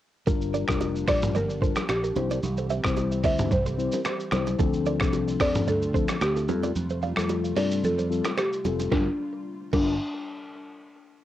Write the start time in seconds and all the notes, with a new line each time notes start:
0.27 G1 F3 G3 A#3 D4 F4 G4 A#4, kick, low conga, shaker
0.41 shaker
0.54 A#4 D5, low bongo, shaker
0.67 F1 G3 D4 F4 A#4, finger snap, kick, cross-stick, shaker
0.80 high bongo, shaker
0.96 shaker
1.08 A#1 G3 D4 F4 A4 A#4 C5 D5, finger snap, kick, cross-stick, open hi-hat, high bongo, shaker
1.22 mid tom, shaker
1.35 G1 A#4 D5, low conga, shaker
1.50 shaker
1.62 G3 D4 F4 A4 A#4 C5, kick, shaker
1.76 finger snap, cross-stick, low bongo, shaker
1.89 A#1 G4, finger snap, cross-stick, high bongo, shaker
2.04 G4 A#4, shaker
2.16 C2 E3 G3 C4 E4 C5, high bongo, low bongo, low conga, shaker
2.31 A#4 D5, low bongo, shaker
2.43 C2, low conga, shaker
2.57 A4 C5, shaker
2.70 C5 E5, low bongo, shaker
2.84 C2 G3 C4 E4 C5, finger snap, kick, cross-stick, shaker
2.97 high bongo, shaker
3.12 shaker
3.24 D2 G3 C4 E4 A#4 C5 D5 E5, kick, open hi-hat, high bongo, shaker
3.39 mid tom, shaker
3.51 C2 C5, kick, low conga, shaker
3.66 A4 C5, shaker
3.78 G3 C4 E4 C5, shaker
3.92 G4 A#4, low bongo, shaker
4.05 G4 C5, finger snap, cross-stick, high bongo, shaker
4.20 shaker
4.31 C2 G3 C4 E4 C5, finger snap, cross-stick, high bongo, low bongo, low conga, shaker
4.47 low bongo, shaker
4.59 D2 D3 F3 A3 C4 D4 F4 A4, kick, low conga, shaker
4.73 shaker
4.86 A#4 D5, low bongo, shaker
5.00 C2 F3 C4 D4 A4, finger snap, kick, cross-stick, shaker
5.13 high bongo, shaker
5.28 shaker
5.40 F2 F3 C4 D4 A4 C5 D5, finger snap, kick, cross-stick, open hi-hat, high bongo, shaker
5.55 mid tom, shaker
5.67 D2 A4 D5, low conga, shaker
5.82 shaker
5.94 F3 C4 D4 A4 C5, kick, shaker
6.08 finger snap, cross-stick, low bongo, shaker
6.21 D2 G4, finger snap, cross-stick, high bongo, shaker
6.36 F4 A4, shaker
6.48 F2 C3 G3 C4 F4 A4, high bongo, low bongo, low conga, shaker
6.63 A#4 D5, low bongo, shaker
6.75 F2, low conga, shaker
6.89 A4 C5, shaker
7.02 D5 F5, low bongo, shaker
7.16 F2 G3 C4 F4 A4, finger snap, cross-stick, shaker
7.29 high bongo, shaker
7.44 shaker
7.56 G2 G3 C4 F4 A4 A#4 D5, open hi-hat, high bongo, shaker
7.71 shaker
7.83 F2 A4, low conga, shaker
7.98 A4 C5, shaker
8.10 G3 C4 F4 A4, shaker
8.24 F4 A4, finger snap, cross-stick, low bongo, shaker
8.37 G4 A4 C5, finger snap, cross-stick, high bongo, shaker
8.53 shaker
8.65 F1 G3 C4 F4 A4, high bongo, low bongo, low conga, shaker
8.79 low bongo, shaker
8.91 G1 D3 G3 A#3 D4 F4 A#4, kick, snare, low conga
9.73 G1 G3 D4 F4 A#4, kick, crash, low conga